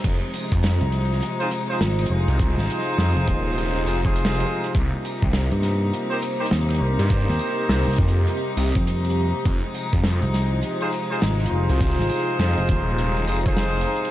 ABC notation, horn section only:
X:1
M:4/4
L:1/16
Q:"Swing 16ths" 1/4=102
K:Fm
V:1 name="Horn section"
z8 z [EFAc] z [EFAc] z2 [EFAc]2- | [EFAc]8- [EFAc]2 [EFAc] [EFAc]4- [EFAc] | z8 z [EGBc] z [EGBc] z2 [EGBc]2- | [EGBc]8- [EGBc]2 z6 |
z8 z [EFAc] z [EFAc] z2 [EFAc]2- | [EFAc]8- [EFAc]2 [EFAc] [EFAc]4- [EFAc] |]